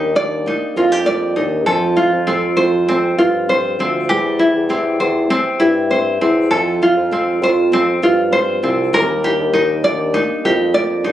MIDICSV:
0, 0, Header, 1, 4, 480
1, 0, Start_track
1, 0, Key_signature, -1, "major"
1, 0, Tempo, 605449
1, 1322, Time_signature, 4, 2, 24, 8
1, 8816, End_track
2, 0, Start_track
2, 0, Title_t, "Ukulele"
2, 0, Program_c, 0, 24
2, 0, Note_on_c, 0, 63, 51
2, 0, Note_on_c, 0, 67, 53
2, 0, Note_on_c, 0, 70, 67
2, 127, Note_on_c, 0, 74, 67
2, 367, Note_off_c, 0, 63, 0
2, 376, Note_on_c, 0, 63, 63
2, 603, Note_off_c, 0, 67, 0
2, 611, Note_on_c, 0, 65, 56
2, 728, Note_off_c, 0, 65, 0
2, 728, Note_on_c, 0, 67, 39
2, 832, Note_off_c, 0, 74, 0
2, 841, Note_on_c, 0, 74, 62
2, 1069, Note_off_c, 0, 63, 0
2, 1079, Note_on_c, 0, 63, 51
2, 1314, Note_off_c, 0, 70, 0
2, 1317, Note_on_c, 0, 69, 63
2, 1369, Note_off_c, 0, 63, 0
2, 1370, Note_off_c, 0, 74, 0
2, 1373, Note_off_c, 0, 67, 0
2, 1558, Note_on_c, 0, 65, 51
2, 1799, Note_on_c, 0, 60, 57
2, 2035, Note_on_c, 0, 72, 61
2, 2284, Note_off_c, 0, 60, 0
2, 2287, Note_on_c, 0, 60, 62
2, 2515, Note_off_c, 0, 65, 0
2, 2525, Note_on_c, 0, 65, 52
2, 2766, Note_off_c, 0, 72, 0
2, 2769, Note_on_c, 0, 72, 61
2, 3010, Note_off_c, 0, 60, 0
2, 3013, Note_on_c, 0, 60, 53
2, 3239, Note_off_c, 0, 69, 0
2, 3243, Note_on_c, 0, 67, 61
2, 3291, Note_off_c, 0, 65, 0
2, 3483, Note_on_c, 0, 64, 54
2, 3722, Note_off_c, 0, 60, 0
2, 3725, Note_on_c, 0, 60, 55
2, 3961, Note_off_c, 0, 72, 0
2, 3965, Note_on_c, 0, 72, 63
2, 4201, Note_off_c, 0, 60, 0
2, 4204, Note_on_c, 0, 60, 68
2, 4427, Note_off_c, 0, 64, 0
2, 4437, Note_on_c, 0, 64, 53
2, 4679, Note_off_c, 0, 72, 0
2, 4682, Note_on_c, 0, 72, 55
2, 4922, Note_off_c, 0, 60, 0
2, 4926, Note_on_c, 0, 60, 50
2, 5155, Note_off_c, 0, 67, 0
2, 5158, Note_on_c, 0, 69, 59
2, 5207, Note_off_c, 0, 64, 0
2, 5411, Note_on_c, 0, 65, 50
2, 5645, Note_off_c, 0, 60, 0
2, 5648, Note_on_c, 0, 60, 51
2, 5891, Note_off_c, 0, 72, 0
2, 5894, Note_on_c, 0, 72, 62
2, 6121, Note_off_c, 0, 60, 0
2, 6131, Note_on_c, 0, 60, 64
2, 6359, Note_off_c, 0, 65, 0
2, 6368, Note_on_c, 0, 65, 53
2, 6591, Note_off_c, 0, 72, 0
2, 6600, Note_on_c, 0, 72, 66
2, 6836, Note_off_c, 0, 60, 0
2, 6845, Note_on_c, 0, 60, 49
2, 7079, Note_off_c, 0, 69, 0
2, 7088, Note_on_c, 0, 70, 73
2, 7129, Note_off_c, 0, 72, 0
2, 7131, Note_off_c, 0, 60, 0
2, 7133, Note_off_c, 0, 65, 0
2, 7327, Note_on_c, 0, 67, 58
2, 7559, Note_on_c, 0, 63, 55
2, 7802, Note_on_c, 0, 74, 66
2, 8029, Note_off_c, 0, 63, 0
2, 8038, Note_on_c, 0, 63, 68
2, 8276, Note_off_c, 0, 67, 0
2, 8286, Note_on_c, 0, 67, 54
2, 8507, Note_off_c, 0, 74, 0
2, 8517, Note_on_c, 0, 74, 63
2, 8746, Note_off_c, 0, 63, 0
2, 8756, Note_on_c, 0, 63, 58
2, 8816, Note_off_c, 0, 63, 0
2, 8816, Note_off_c, 0, 67, 0
2, 8816, Note_off_c, 0, 70, 0
2, 8816, Note_off_c, 0, 74, 0
2, 8816, End_track
3, 0, Start_track
3, 0, Title_t, "Nylon-string guitar"
3, 0, Program_c, 1, 24
3, 0, Note_on_c, 1, 55, 67
3, 0, Note_on_c, 1, 62, 52
3, 0, Note_on_c, 1, 70, 53
3, 113, Note_off_c, 1, 62, 0
3, 122, Note_on_c, 1, 62, 53
3, 365, Note_on_c, 1, 58, 63
3, 596, Note_off_c, 1, 70, 0
3, 605, Note_on_c, 1, 70, 55
3, 832, Note_off_c, 1, 58, 0
3, 842, Note_on_c, 1, 58, 51
3, 1073, Note_off_c, 1, 62, 0
3, 1083, Note_on_c, 1, 62, 55
3, 1319, Note_off_c, 1, 55, 0
3, 1323, Note_on_c, 1, 53, 65
3, 1370, Note_off_c, 1, 58, 0
3, 1371, Note_off_c, 1, 62, 0
3, 1372, Note_off_c, 1, 70, 0
3, 1565, Note_on_c, 1, 65, 52
3, 1807, Note_on_c, 1, 69, 61
3, 2036, Note_off_c, 1, 65, 0
3, 2046, Note_on_c, 1, 65, 51
3, 2288, Note_on_c, 1, 60, 65
3, 2518, Note_off_c, 1, 69, 0
3, 2528, Note_on_c, 1, 69, 57
3, 2763, Note_off_c, 1, 60, 0
3, 2766, Note_on_c, 1, 60, 54
3, 2997, Note_off_c, 1, 65, 0
3, 3006, Note_on_c, 1, 65, 54
3, 3242, Note_off_c, 1, 53, 0
3, 3248, Note_on_c, 1, 55, 73
3, 3292, Note_off_c, 1, 65, 0
3, 3293, Note_off_c, 1, 69, 0
3, 3484, Note_on_c, 1, 64, 51
3, 3720, Note_on_c, 1, 67, 55
3, 3952, Note_off_c, 1, 64, 0
3, 3962, Note_on_c, 1, 64, 54
3, 4200, Note_off_c, 1, 60, 0
3, 4203, Note_on_c, 1, 60, 55
3, 4432, Note_off_c, 1, 67, 0
3, 4441, Note_on_c, 1, 67, 53
3, 4685, Note_off_c, 1, 60, 0
3, 4688, Note_on_c, 1, 60, 54
3, 4916, Note_off_c, 1, 64, 0
3, 4926, Note_on_c, 1, 64, 52
3, 5157, Note_off_c, 1, 55, 0
3, 5161, Note_on_c, 1, 53, 64
3, 5209, Note_off_c, 1, 67, 0
3, 5211, Note_off_c, 1, 64, 0
3, 5405, Note_on_c, 1, 65, 51
3, 5640, Note_on_c, 1, 69, 58
3, 5874, Note_off_c, 1, 65, 0
3, 5883, Note_on_c, 1, 65, 55
3, 6117, Note_off_c, 1, 60, 0
3, 6120, Note_on_c, 1, 60, 65
3, 6351, Note_off_c, 1, 69, 0
3, 6361, Note_on_c, 1, 69, 58
3, 6590, Note_off_c, 1, 60, 0
3, 6600, Note_on_c, 1, 60, 56
3, 6829, Note_off_c, 1, 65, 0
3, 6839, Note_on_c, 1, 65, 58
3, 7077, Note_off_c, 1, 53, 0
3, 7080, Note_on_c, 1, 55, 70
3, 7128, Note_off_c, 1, 60, 0
3, 7128, Note_off_c, 1, 65, 0
3, 7129, Note_off_c, 1, 69, 0
3, 7324, Note_on_c, 1, 62, 52
3, 7564, Note_on_c, 1, 70, 59
3, 7794, Note_off_c, 1, 62, 0
3, 7804, Note_on_c, 1, 62, 49
3, 8047, Note_on_c, 1, 58, 66
3, 8274, Note_off_c, 1, 70, 0
3, 8284, Note_on_c, 1, 70, 56
3, 8517, Note_off_c, 1, 58, 0
3, 8526, Note_on_c, 1, 58, 55
3, 8758, Note_off_c, 1, 62, 0
3, 8768, Note_on_c, 1, 62, 57
3, 8816, Note_off_c, 1, 55, 0
3, 8816, Note_off_c, 1, 58, 0
3, 8816, Note_off_c, 1, 62, 0
3, 8816, Note_off_c, 1, 70, 0
3, 8816, End_track
4, 0, Start_track
4, 0, Title_t, "Bassoon"
4, 0, Program_c, 2, 70
4, 0, Note_on_c, 2, 39, 75
4, 95, Note_off_c, 2, 39, 0
4, 126, Note_on_c, 2, 39, 95
4, 390, Note_off_c, 2, 39, 0
4, 604, Note_on_c, 2, 41, 82
4, 1052, Note_off_c, 2, 41, 0
4, 1084, Note_on_c, 2, 39, 83
4, 1326, Note_on_c, 2, 41, 92
4, 1338, Note_off_c, 2, 39, 0
4, 1656, Note_off_c, 2, 41, 0
4, 1685, Note_on_c, 2, 41, 76
4, 2015, Note_off_c, 2, 41, 0
4, 2046, Note_on_c, 2, 41, 86
4, 2492, Note_off_c, 2, 41, 0
4, 2521, Note_on_c, 2, 43, 76
4, 2970, Note_off_c, 2, 43, 0
4, 3002, Note_on_c, 2, 38, 75
4, 3223, Note_off_c, 2, 38, 0
4, 3247, Note_on_c, 2, 40, 84
4, 3575, Note_off_c, 2, 40, 0
4, 3606, Note_on_c, 2, 40, 80
4, 3935, Note_off_c, 2, 40, 0
4, 3961, Note_on_c, 2, 40, 84
4, 4206, Note_off_c, 2, 40, 0
4, 4446, Note_on_c, 2, 43, 80
4, 4891, Note_off_c, 2, 43, 0
4, 4922, Note_on_c, 2, 40, 78
4, 5142, Note_off_c, 2, 40, 0
4, 5164, Note_on_c, 2, 41, 84
4, 5494, Note_off_c, 2, 41, 0
4, 5525, Note_on_c, 2, 41, 81
4, 5854, Note_off_c, 2, 41, 0
4, 5879, Note_on_c, 2, 41, 91
4, 6328, Note_off_c, 2, 41, 0
4, 6362, Note_on_c, 2, 43, 86
4, 6810, Note_off_c, 2, 43, 0
4, 6845, Note_on_c, 2, 36, 87
4, 7064, Note_off_c, 2, 36, 0
4, 7082, Note_on_c, 2, 39, 93
4, 7413, Note_off_c, 2, 39, 0
4, 7447, Note_on_c, 2, 39, 75
4, 7775, Note_off_c, 2, 39, 0
4, 7805, Note_on_c, 2, 39, 94
4, 8069, Note_off_c, 2, 39, 0
4, 8289, Note_on_c, 2, 41, 92
4, 8733, Note_off_c, 2, 41, 0
4, 8769, Note_on_c, 2, 39, 85
4, 8816, Note_off_c, 2, 39, 0
4, 8816, End_track
0, 0, End_of_file